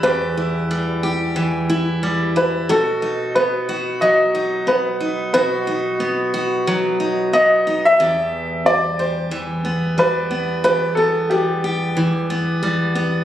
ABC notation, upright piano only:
X:1
M:4/4
L:1/16
Q:"Swing 16ths" 1/4=90
K:Em
V:1 name="Upright piano"
B6 z8 B2 | A4 B4 ^d4 B4 | B12 ^d3 e- | e4 d2 c4 z2 B4 |
B2 A2 G8 z4 |]